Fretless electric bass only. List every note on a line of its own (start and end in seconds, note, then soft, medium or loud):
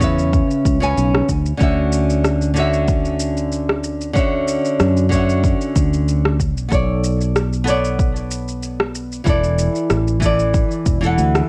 0.00 0.42 E2 medium
0.65 0.97 C#2 medium
0.97 1.20 B1 medium
1.29 1.52 D2 medium
1.61 4.57 D2 medium
4.80 5.53 F#2 medium
5.76 6.57 D2 medium
6.57 6.67 B1 medium
6.72 9.20 B1 medium
9.26 9.67 E1 loud
9.90 10.63 A1 medium
10.86 11.17 E1 medium
11.18 11.41 D2 medium